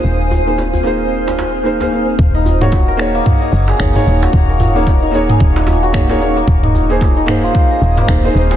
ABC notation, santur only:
X:1
M:4/4
L:1/16
Q:"Swing 16ths" 1/4=112
K:Ebdor
V:1 name="Santur"
z16 | z E2 G2 B2 B, z E z A z E2 G- | G B2 B, z E z A z E2 G2 B2 B, | z E z A z E2 F2 B2 B, z E z A |]